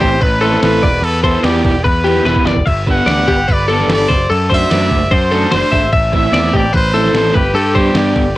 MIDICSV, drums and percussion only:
0, 0, Header, 1, 2, 480
1, 0, Start_track
1, 0, Key_signature, 1, "major"
1, 0, Tempo, 407332
1, 1217, Time_signature, 4, 2, 24, 8
1, 9868, End_track
2, 0, Start_track
2, 0, Title_t, "Drums"
2, 17, Note_on_c, 9, 36, 87
2, 17, Note_on_c, 9, 49, 66
2, 134, Note_off_c, 9, 49, 0
2, 135, Note_off_c, 9, 36, 0
2, 252, Note_on_c, 9, 49, 86
2, 256, Note_on_c, 9, 36, 116
2, 369, Note_off_c, 9, 49, 0
2, 374, Note_off_c, 9, 36, 0
2, 497, Note_on_c, 9, 49, 70
2, 615, Note_off_c, 9, 49, 0
2, 628, Note_on_c, 9, 38, 34
2, 738, Note_on_c, 9, 49, 95
2, 739, Note_off_c, 9, 38, 0
2, 739, Note_on_c, 9, 38, 113
2, 856, Note_off_c, 9, 49, 0
2, 857, Note_off_c, 9, 38, 0
2, 980, Note_on_c, 9, 36, 110
2, 992, Note_on_c, 9, 49, 68
2, 1098, Note_off_c, 9, 36, 0
2, 1109, Note_off_c, 9, 49, 0
2, 1223, Note_on_c, 9, 49, 106
2, 1340, Note_off_c, 9, 49, 0
2, 1459, Note_on_c, 9, 36, 78
2, 1465, Note_on_c, 9, 49, 67
2, 1576, Note_off_c, 9, 36, 0
2, 1583, Note_off_c, 9, 49, 0
2, 1696, Note_on_c, 9, 49, 95
2, 1697, Note_on_c, 9, 38, 106
2, 1814, Note_off_c, 9, 49, 0
2, 1815, Note_off_c, 9, 38, 0
2, 1940, Note_on_c, 9, 36, 88
2, 1940, Note_on_c, 9, 49, 70
2, 2057, Note_off_c, 9, 49, 0
2, 2058, Note_off_c, 9, 36, 0
2, 2183, Note_on_c, 9, 36, 127
2, 2192, Note_on_c, 9, 49, 80
2, 2301, Note_off_c, 9, 36, 0
2, 2310, Note_off_c, 9, 49, 0
2, 2433, Note_on_c, 9, 49, 68
2, 2550, Note_on_c, 9, 38, 37
2, 2551, Note_off_c, 9, 49, 0
2, 2667, Note_off_c, 9, 38, 0
2, 2668, Note_on_c, 9, 38, 72
2, 2782, Note_on_c, 9, 36, 75
2, 2786, Note_off_c, 9, 38, 0
2, 2900, Note_off_c, 9, 36, 0
2, 2910, Note_on_c, 9, 38, 93
2, 3022, Note_on_c, 9, 36, 94
2, 3027, Note_off_c, 9, 38, 0
2, 3140, Note_off_c, 9, 36, 0
2, 3143, Note_on_c, 9, 36, 108
2, 3144, Note_on_c, 9, 49, 96
2, 3261, Note_off_c, 9, 36, 0
2, 3262, Note_off_c, 9, 49, 0
2, 3384, Note_on_c, 9, 36, 82
2, 3386, Note_on_c, 9, 49, 58
2, 3502, Note_off_c, 9, 36, 0
2, 3504, Note_off_c, 9, 49, 0
2, 3625, Note_on_c, 9, 49, 83
2, 3626, Note_on_c, 9, 38, 111
2, 3743, Note_off_c, 9, 49, 0
2, 3744, Note_off_c, 9, 38, 0
2, 3865, Note_on_c, 9, 49, 62
2, 3868, Note_on_c, 9, 36, 86
2, 3983, Note_off_c, 9, 49, 0
2, 3985, Note_off_c, 9, 36, 0
2, 4106, Note_on_c, 9, 49, 92
2, 4109, Note_on_c, 9, 36, 110
2, 4224, Note_off_c, 9, 49, 0
2, 4226, Note_off_c, 9, 36, 0
2, 4352, Note_on_c, 9, 49, 68
2, 4469, Note_off_c, 9, 49, 0
2, 4476, Note_on_c, 9, 38, 38
2, 4590, Note_on_c, 9, 49, 100
2, 4591, Note_off_c, 9, 38, 0
2, 4591, Note_on_c, 9, 38, 122
2, 4707, Note_off_c, 9, 49, 0
2, 4709, Note_off_c, 9, 38, 0
2, 4834, Note_on_c, 9, 36, 121
2, 4844, Note_on_c, 9, 49, 68
2, 4952, Note_off_c, 9, 36, 0
2, 4962, Note_off_c, 9, 49, 0
2, 5086, Note_on_c, 9, 49, 94
2, 5203, Note_off_c, 9, 49, 0
2, 5314, Note_on_c, 9, 36, 87
2, 5317, Note_on_c, 9, 49, 74
2, 5431, Note_off_c, 9, 36, 0
2, 5435, Note_off_c, 9, 49, 0
2, 5551, Note_on_c, 9, 49, 103
2, 5552, Note_on_c, 9, 38, 127
2, 5669, Note_off_c, 9, 49, 0
2, 5670, Note_off_c, 9, 38, 0
2, 5788, Note_on_c, 9, 49, 67
2, 5790, Note_on_c, 9, 36, 85
2, 5906, Note_off_c, 9, 49, 0
2, 5908, Note_off_c, 9, 36, 0
2, 6028, Note_on_c, 9, 49, 86
2, 6031, Note_on_c, 9, 36, 116
2, 6146, Note_off_c, 9, 49, 0
2, 6149, Note_off_c, 9, 36, 0
2, 6267, Note_on_c, 9, 49, 72
2, 6385, Note_off_c, 9, 49, 0
2, 6390, Note_on_c, 9, 38, 38
2, 6499, Note_on_c, 9, 49, 89
2, 6500, Note_off_c, 9, 38, 0
2, 6500, Note_on_c, 9, 38, 125
2, 6617, Note_off_c, 9, 49, 0
2, 6618, Note_off_c, 9, 38, 0
2, 6749, Note_on_c, 9, 36, 87
2, 6751, Note_on_c, 9, 49, 65
2, 6867, Note_off_c, 9, 36, 0
2, 6869, Note_off_c, 9, 49, 0
2, 6982, Note_on_c, 9, 49, 86
2, 6987, Note_on_c, 9, 36, 124
2, 7100, Note_off_c, 9, 49, 0
2, 7105, Note_off_c, 9, 36, 0
2, 7223, Note_on_c, 9, 49, 59
2, 7227, Note_on_c, 9, 36, 78
2, 7341, Note_off_c, 9, 49, 0
2, 7345, Note_off_c, 9, 36, 0
2, 7470, Note_on_c, 9, 49, 86
2, 7471, Note_on_c, 9, 38, 119
2, 7588, Note_off_c, 9, 49, 0
2, 7589, Note_off_c, 9, 38, 0
2, 7708, Note_on_c, 9, 36, 77
2, 7714, Note_on_c, 9, 49, 57
2, 7826, Note_off_c, 9, 36, 0
2, 7832, Note_off_c, 9, 49, 0
2, 7939, Note_on_c, 9, 49, 91
2, 7945, Note_on_c, 9, 36, 122
2, 8057, Note_off_c, 9, 49, 0
2, 8062, Note_off_c, 9, 36, 0
2, 8191, Note_on_c, 9, 49, 63
2, 8309, Note_off_c, 9, 49, 0
2, 8310, Note_on_c, 9, 38, 39
2, 8419, Note_on_c, 9, 49, 86
2, 8420, Note_off_c, 9, 38, 0
2, 8420, Note_on_c, 9, 38, 115
2, 8537, Note_off_c, 9, 49, 0
2, 8538, Note_off_c, 9, 38, 0
2, 8666, Note_on_c, 9, 36, 110
2, 8670, Note_on_c, 9, 49, 66
2, 8784, Note_off_c, 9, 36, 0
2, 8788, Note_off_c, 9, 49, 0
2, 8910, Note_on_c, 9, 49, 92
2, 9028, Note_off_c, 9, 49, 0
2, 9142, Note_on_c, 9, 36, 80
2, 9260, Note_off_c, 9, 36, 0
2, 9367, Note_on_c, 9, 49, 85
2, 9369, Note_on_c, 9, 38, 124
2, 9485, Note_off_c, 9, 49, 0
2, 9486, Note_off_c, 9, 38, 0
2, 9614, Note_on_c, 9, 49, 67
2, 9618, Note_on_c, 9, 36, 95
2, 9732, Note_off_c, 9, 49, 0
2, 9735, Note_off_c, 9, 36, 0
2, 9868, End_track
0, 0, End_of_file